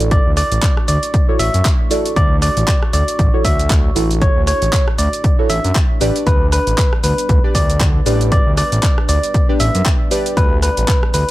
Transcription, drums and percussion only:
0.00 closed hi-hat medium
0.00 shaker soft
0.11 kick loud
0.11 closed hi-hat medium
0.11 shaker soft
0.37 cross-stick medium
0.37 open hi-hat loud
0.37 shaker medium
0.52 closed hi-hat medium
0.52 shaker soft
0.63 kick loud
0.63 clap loud
0.63 closed hi-hat medium
0.63 shaker soft
0.77 cross-stick medium
0.88 open hi-hat loud
0.88 shaker medium
1.03 closed hi-hat medium
1.03 shaker soft
1.14 kick loud
1.14 closed hi-hat medium
1.14 shaker soft
1.39 open hi-hat loud
1.39 shaker medium
1.54 closed hi-hat medium
1.54 shaker soft
1.65 kick loud
1.65 clap loud
1.65 closed hi-hat medium
1.65 shaker soft
1.91 open hi-hat loud
1.91 shaker medium
2.06 closed hi-hat medium
2.06 shaker soft
2.16 kick loud
2.16 closed hi-hat medium
2.16 shaker soft
2.42 cross-stick medium
2.42 open hi-hat loud
2.42 shaker medium
2.57 closed hi-hat medium
2.57 shaker soft
2.68 kick loud
2.68 clap loud
2.68 closed hi-hat medium
2.68 shaker soft
2.82 cross-stick medium
2.93 open hi-hat loud
2.93 shaker medium
3.08 closed hi-hat medium
3.08 shaker soft
3.19 kick loud
3.19 closed hi-hat medium
3.19 shaker soft
3.45 kick medium
3.45 open hi-hat loud
3.45 shaker medium
3.59 closed hi-hat medium
3.59 shaker soft
3.70 kick loud
3.70 clap loud
3.70 closed hi-hat medium
3.70 shaker soft
3.96 open hi-hat loud
3.96 shaker medium
4.11 closed hi-hat medium
4.11 shaker soft
4.22 kick loud
4.22 closed hi-hat medium
4.22 shaker soft
4.47 cross-stick medium
4.47 open hi-hat loud
4.47 shaker medium
4.62 closed hi-hat medium
4.62 shaker soft
4.73 kick loud
4.73 clap loud
4.73 closed hi-hat medium
4.73 shaker soft
4.88 cross-stick medium
4.98 open hi-hat loud
4.98 shaker medium
5.13 closed hi-hat medium
5.13 shaker soft
5.24 kick loud
5.24 closed hi-hat medium
5.24 shaker soft
5.50 open hi-hat loud
5.50 shaker medium
5.64 closed hi-hat medium
5.64 shaker soft
5.75 kick loud
5.75 clap loud
5.75 closed hi-hat soft
5.75 shaker soft
6.01 open hi-hat loud
6.01 shaker medium
6.16 closed hi-hat medium
6.16 shaker soft
6.27 kick loud
6.27 closed hi-hat medium
6.27 shaker soft
6.52 cross-stick medium
6.52 open hi-hat loud
6.52 shaker medium
6.67 closed hi-hat medium
6.67 shaker soft
6.78 kick loud
6.78 clap loud
6.78 closed hi-hat medium
6.78 shaker soft
6.93 cross-stick medium
7.04 open hi-hat loud
7.04 shaker medium
7.18 closed hi-hat medium
7.18 shaker soft
7.29 kick loud
7.29 closed hi-hat soft
7.29 shaker soft
7.55 kick medium
7.55 open hi-hat loud
7.55 shaker medium
7.70 closed hi-hat medium
7.70 shaker soft
7.80 kick loud
7.80 clap loud
7.80 closed hi-hat medium
7.80 shaker soft
8.06 open hi-hat loud
8.06 shaker medium
8.21 closed hi-hat medium
8.21 shaker soft
8.32 kick loud
8.32 closed hi-hat medium
8.32 shaker soft
8.57 cross-stick medium
8.57 open hi-hat loud
8.57 shaker medium
8.72 closed hi-hat medium
8.72 shaker soft
8.83 kick loud
8.83 clap loud
8.83 closed hi-hat medium
8.83 shaker soft
8.98 cross-stick medium
9.09 open hi-hat loud
9.09 shaker medium
9.23 closed hi-hat medium
9.23 shaker soft
9.34 kick loud
9.34 closed hi-hat medium
9.34 shaker soft
9.60 open hi-hat loud
9.60 shaker medium
9.75 closed hi-hat medium
9.75 shaker soft
9.86 kick loud
9.86 clap loud
9.86 closed hi-hat medium
9.86 shaker soft
10.11 open hi-hat loud
10.11 shaker medium
10.26 closed hi-hat medium
10.26 shaker soft
10.37 kick loud
10.37 closed hi-hat medium
10.37 shaker soft
10.63 cross-stick medium
10.63 open hi-hat loud
10.63 shaker medium
10.77 closed hi-hat medium
10.77 shaker soft
10.88 kick loud
10.88 clap loud
10.88 closed hi-hat medium
10.88 shaker soft
11.03 cross-stick medium
11.14 open hi-hat loud
11.14 shaker medium

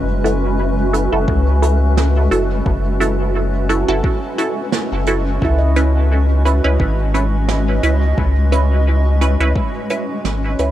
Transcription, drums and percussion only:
0.25 closed hi-hat medium
0.94 closed hi-hat medium
1.28 kick loud
1.63 closed hi-hat medium
1.97 snare loud
2.31 closed hi-hat medium
2.66 kick loud
3.01 closed hi-hat medium
3.69 closed hi-hat medium
4.04 kick loud
4.38 closed hi-hat medium
4.72 snare loud
5.06 closed hi-hat medium
5.42 kick loud
5.76 closed hi-hat medium
6.46 closed hi-hat medium
6.80 kick loud
7.14 closed hi-hat medium
7.49 snare medium
7.83 closed hi-hat medium
8.18 kick loud
8.52 closed hi-hat medium
9.21 closed hi-hat medium
9.56 kick loud
9.90 closed hi-hat medium
10.25 snare medium
10.59 closed hi-hat medium

